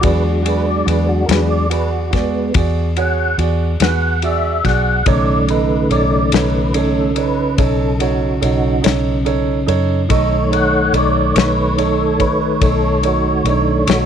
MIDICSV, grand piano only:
0, 0, Header, 1, 2, 480
1, 0, Start_track
1, 0, Tempo, 839161
1, 18, Time_signature, 12, 3, 24, 8
1, 8041, End_track
2, 0, Start_track
2, 0, Title_t, "Grand piano"
2, 0, Program_c, 0, 0
2, 5, Note_on_c, 0, 66, 63
2, 14, Note_on_c, 0, 68, 55
2, 17, Note_on_c, 0, 74, 65
2, 192, Note_off_c, 0, 66, 0
2, 196, Note_off_c, 0, 68, 0
2, 197, Note_off_c, 0, 74, 0
2, 243, Note_on_c, 0, 66, 51
2, 252, Note_on_c, 0, 68, 49
2, 254, Note_on_c, 0, 74, 58
2, 430, Note_off_c, 0, 66, 0
2, 435, Note_off_c, 0, 68, 0
2, 436, Note_off_c, 0, 74, 0
2, 491, Note_on_c, 0, 66, 51
2, 495, Note_on_c, 0, 68, 46
2, 503, Note_on_c, 0, 74, 54
2, 674, Note_off_c, 0, 66, 0
2, 676, Note_off_c, 0, 68, 0
2, 680, Note_off_c, 0, 74, 0
2, 735, Note_on_c, 0, 66, 48
2, 740, Note_on_c, 0, 68, 46
2, 742, Note_on_c, 0, 74, 52
2, 916, Note_off_c, 0, 66, 0
2, 918, Note_off_c, 0, 68, 0
2, 920, Note_off_c, 0, 74, 0
2, 972, Note_on_c, 0, 66, 56
2, 973, Note_on_c, 0, 68, 47
2, 982, Note_on_c, 0, 74, 56
2, 1154, Note_off_c, 0, 66, 0
2, 1155, Note_off_c, 0, 68, 0
2, 1160, Note_off_c, 0, 74, 0
2, 1205, Note_on_c, 0, 66, 49
2, 1211, Note_on_c, 0, 68, 44
2, 1219, Note_on_c, 0, 74, 58
2, 1391, Note_off_c, 0, 66, 0
2, 1394, Note_off_c, 0, 68, 0
2, 1398, Note_off_c, 0, 74, 0
2, 1455, Note_on_c, 0, 66, 51
2, 1459, Note_on_c, 0, 68, 50
2, 1464, Note_on_c, 0, 74, 61
2, 1636, Note_off_c, 0, 66, 0
2, 1638, Note_off_c, 0, 68, 0
2, 1640, Note_off_c, 0, 74, 0
2, 1698, Note_on_c, 0, 66, 50
2, 1701, Note_on_c, 0, 68, 48
2, 1708, Note_on_c, 0, 73, 57
2, 1877, Note_off_c, 0, 66, 0
2, 1879, Note_off_c, 0, 68, 0
2, 1882, Note_off_c, 0, 73, 0
2, 1936, Note_on_c, 0, 66, 49
2, 1937, Note_on_c, 0, 68, 45
2, 1942, Note_on_c, 0, 74, 55
2, 2116, Note_off_c, 0, 66, 0
2, 2116, Note_off_c, 0, 68, 0
2, 2119, Note_off_c, 0, 74, 0
2, 2179, Note_on_c, 0, 66, 53
2, 2181, Note_on_c, 0, 68, 49
2, 2189, Note_on_c, 0, 71, 63
2, 2357, Note_off_c, 0, 66, 0
2, 2358, Note_off_c, 0, 68, 0
2, 2363, Note_off_c, 0, 71, 0
2, 2418, Note_on_c, 0, 66, 52
2, 2424, Note_on_c, 0, 68, 52
2, 2426, Note_on_c, 0, 74, 62
2, 2597, Note_off_c, 0, 66, 0
2, 2600, Note_off_c, 0, 68, 0
2, 2601, Note_off_c, 0, 74, 0
2, 2654, Note_on_c, 0, 66, 52
2, 2664, Note_on_c, 0, 68, 49
2, 2665, Note_on_c, 0, 74, 56
2, 2835, Note_off_c, 0, 66, 0
2, 2840, Note_off_c, 0, 68, 0
2, 2841, Note_off_c, 0, 74, 0
2, 2894, Note_on_c, 0, 63, 65
2, 2897, Note_on_c, 0, 69, 58
2, 2903, Note_on_c, 0, 73, 75
2, 3075, Note_off_c, 0, 63, 0
2, 3077, Note_off_c, 0, 69, 0
2, 3079, Note_off_c, 0, 73, 0
2, 3138, Note_on_c, 0, 63, 55
2, 3145, Note_on_c, 0, 69, 50
2, 3152, Note_on_c, 0, 75, 56
2, 3317, Note_off_c, 0, 63, 0
2, 3321, Note_off_c, 0, 69, 0
2, 3324, Note_off_c, 0, 75, 0
2, 3373, Note_on_c, 0, 63, 56
2, 3380, Note_on_c, 0, 69, 46
2, 3383, Note_on_c, 0, 73, 60
2, 3554, Note_off_c, 0, 63, 0
2, 3558, Note_off_c, 0, 69, 0
2, 3560, Note_off_c, 0, 73, 0
2, 3616, Note_on_c, 0, 63, 53
2, 3621, Note_on_c, 0, 69, 46
2, 3628, Note_on_c, 0, 73, 54
2, 3796, Note_off_c, 0, 63, 0
2, 3798, Note_off_c, 0, 69, 0
2, 3802, Note_off_c, 0, 73, 0
2, 3856, Note_on_c, 0, 63, 54
2, 3861, Note_on_c, 0, 69, 46
2, 3865, Note_on_c, 0, 73, 60
2, 4036, Note_off_c, 0, 63, 0
2, 4039, Note_off_c, 0, 69, 0
2, 4040, Note_off_c, 0, 73, 0
2, 4088, Note_on_c, 0, 63, 52
2, 4097, Note_on_c, 0, 69, 45
2, 4104, Note_on_c, 0, 73, 57
2, 4272, Note_off_c, 0, 63, 0
2, 4276, Note_off_c, 0, 69, 0
2, 4280, Note_off_c, 0, 73, 0
2, 4333, Note_on_c, 0, 63, 58
2, 4338, Note_on_c, 0, 69, 50
2, 4342, Note_on_c, 0, 73, 56
2, 4515, Note_off_c, 0, 63, 0
2, 4517, Note_off_c, 0, 69, 0
2, 4519, Note_off_c, 0, 73, 0
2, 4572, Note_on_c, 0, 63, 54
2, 4581, Note_on_c, 0, 69, 47
2, 4584, Note_on_c, 0, 73, 58
2, 4754, Note_off_c, 0, 63, 0
2, 4758, Note_off_c, 0, 69, 0
2, 4760, Note_off_c, 0, 73, 0
2, 4810, Note_on_c, 0, 63, 49
2, 4812, Note_on_c, 0, 69, 45
2, 4818, Note_on_c, 0, 73, 55
2, 4993, Note_off_c, 0, 63, 0
2, 4994, Note_off_c, 0, 69, 0
2, 4997, Note_off_c, 0, 73, 0
2, 5045, Note_on_c, 0, 63, 54
2, 5053, Note_on_c, 0, 69, 51
2, 5057, Note_on_c, 0, 73, 59
2, 5231, Note_off_c, 0, 63, 0
2, 5235, Note_off_c, 0, 69, 0
2, 5237, Note_off_c, 0, 73, 0
2, 5290, Note_on_c, 0, 63, 65
2, 5295, Note_on_c, 0, 69, 58
2, 5301, Note_on_c, 0, 73, 66
2, 5473, Note_off_c, 0, 63, 0
2, 5476, Note_off_c, 0, 69, 0
2, 5479, Note_off_c, 0, 73, 0
2, 5528, Note_on_c, 0, 63, 68
2, 5532, Note_on_c, 0, 69, 55
2, 5541, Note_on_c, 0, 73, 68
2, 5712, Note_off_c, 0, 63, 0
2, 5714, Note_off_c, 0, 69, 0
2, 5719, Note_off_c, 0, 73, 0
2, 5771, Note_on_c, 0, 63, 72
2, 5778, Note_on_c, 0, 69, 70
2, 5784, Note_on_c, 0, 75, 82
2, 5954, Note_off_c, 0, 63, 0
2, 5957, Note_off_c, 0, 69, 0
2, 5960, Note_off_c, 0, 75, 0
2, 6002, Note_on_c, 0, 63, 52
2, 6011, Note_on_c, 0, 69, 46
2, 6013, Note_on_c, 0, 73, 54
2, 6189, Note_off_c, 0, 63, 0
2, 6194, Note_off_c, 0, 69, 0
2, 6195, Note_off_c, 0, 73, 0
2, 6253, Note_on_c, 0, 63, 49
2, 6253, Note_on_c, 0, 69, 47
2, 6265, Note_on_c, 0, 73, 54
2, 6435, Note_off_c, 0, 63, 0
2, 6435, Note_off_c, 0, 69, 0
2, 6441, Note_off_c, 0, 73, 0
2, 6491, Note_on_c, 0, 63, 52
2, 6497, Note_on_c, 0, 69, 47
2, 6500, Note_on_c, 0, 73, 56
2, 6674, Note_off_c, 0, 63, 0
2, 6677, Note_off_c, 0, 69, 0
2, 6678, Note_off_c, 0, 73, 0
2, 6733, Note_on_c, 0, 63, 53
2, 6739, Note_on_c, 0, 69, 49
2, 6742, Note_on_c, 0, 73, 58
2, 6915, Note_off_c, 0, 63, 0
2, 6918, Note_off_c, 0, 69, 0
2, 6919, Note_off_c, 0, 73, 0
2, 6970, Note_on_c, 0, 63, 48
2, 6978, Note_on_c, 0, 69, 45
2, 6978, Note_on_c, 0, 73, 56
2, 7153, Note_off_c, 0, 63, 0
2, 7157, Note_off_c, 0, 69, 0
2, 7158, Note_off_c, 0, 73, 0
2, 7211, Note_on_c, 0, 63, 55
2, 7216, Note_on_c, 0, 69, 48
2, 7218, Note_on_c, 0, 73, 58
2, 7394, Note_off_c, 0, 63, 0
2, 7396, Note_off_c, 0, 69, 0
2, 7398, Note_off_c, 0, 73, 0
2, 7452, Note_on_c, 0, 63, 49
2, 7462, Note_on_c, 0, 69, 46
2, 7466, Note_on_c, 0, 73, 60
2, 7634, Note_off_c, 0, 63, 0
2, 7640, Note_off_c, 0, 69, 0
2, 7641, Note_off_c, 0, 73, 0
2, 7694, Note_on_c, 0, 63, 47
2, 7701, Note_on_c, 0, 69, 46
2, 7703, Note_on_c, 0, 73, 57
2, 7876, Note_off_c, 0, 63, 0
2, 7879, Note_off_c, 0, 69, 0
2, 7880, Note_off_c, 0, 73, 0
2, 7934, Note_on_c, 0, 63, 49
2, 7941, Note_on_c, 0, 69, 49
2, 7948, Note_on_c, 0, 73, 59
2, 8041, Note_off_c, 0, 63, 0
2, 8041, Note_off_c, 0, 69, 0
2, 8041, Note_off_c, 0, 73, 0
2, 8041, End_track
0, 0, End_of_file